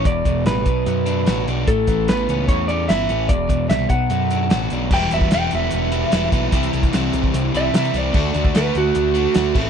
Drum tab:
CC |----------------|----------------|----------------|x---------------|
HH |x-x-x-x-x-x-x-x-|x-x-x-x-x-x-x-x-|x-x-x-x-x-x-x-x-|--x-x-x-x-x-x-x-|
SD |----o-------o---|----o-------o---|----o-------o---|----o-------o---|
BD |o-o---o---------|o-o-----o-------|o-o---o---------|o--o----------o-|

CC |----------------|x-------------x-|
HH |xxxxx-x-x-x-xxx-|--x-x-x-x-x-x---|
SD |----o-------o-o-|----o-------o---|
BD |o--o---o--------|o--o----------o-|